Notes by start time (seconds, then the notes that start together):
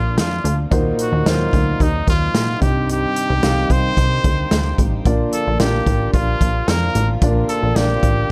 Already playing: A#1 A#2 D3 F3 A#3 D4 F4 D5
0.18 F2 F4, snare, closed hi-hat
0.44 D2, closed hi-hat
0.71 D#2 A#2 C3 D#3 F#3 A#3 D#4 F#4 C5, kick, closed hi-hat
0.99 F#4, closed hi-hat
1.12 D#2
1.25 D#2 F#3 A#3 D#4 F4 C5, snare, closed hi-hat
1.53 D2, kick, closed hi-hat
1.80 D#2 D#4, kick, closed hi-hat
2.07 D#2 F4, kick, closed hi-hat
2.35 A#2, snare, closed hi-hat
2.61 C2 G2 D#3 G3 C4 D#4 G4 D#5, kick, closed hi-hat
2.89 G4, closed hi-hat
3.16 closed hi-hat
3.29 C2
3.42 C2 C4 D#4 G4 F5, snare, closed hi-hat
3.70 C2 C5, kick, closed hi-hat
3.97 C2, kick, closed hi-hat
4.24 D2, kick, closed hi-hat
4.51 D2, snare, closed hi-hat
4.78 A1, kick, closed hi-hat
5.05 A#1 A#2 D3 F3 A#3 D4 F4 D5, kick, closed hi-hat
5.32 A4, closed hi-hat
5.47 A#1
5.59 A#1 A#3 D4 F4 G4, snare, closed hi-hat
5.86 A1, kick, closed hi-hat
6.14 A#1 F4, kick, closed hi-hat
6.41 A#1, kick, closed hi-hat
6.68 F2 A#4, snare, closed hi-hat
6.95 A1, closed hi-hat
7.21 A#1 A#3 C4 D4 F4 D5, kick, closed hi-hat
7.49 A4, closed hi-hat
7.62 A#1
7.76 A#1 A#3 D4 F4 G4 D5, snare, closed hi-hat
8.03 A1, kick, closed hi-hat